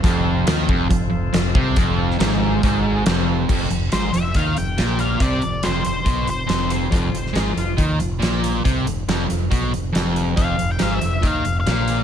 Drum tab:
CC |----------------|----------------|x---------------|----------------|
HH |x---x---x---x---|x---x---x---x---|--x-x-x-x-x-x-x-|x-x-x-x-x-x-x-x-|
SD |----o-------o---|---ooo------o---|----o-------o---|----o-------o---|
BD |o-----o-o-----o-|o-------o-------|o-------o-------|o-------o-------|

CC |----------------|----------------|----------------|
HH |x-x-x-x-x-x-x-x-|x-x-x-x-x-x-x-x-|x-x-x-x-x-x-x-x-|
SD |---oo-------o---|----o-------o---|----o-------o---|
BD |o-------o-------|o-------o-------|o-------o-------|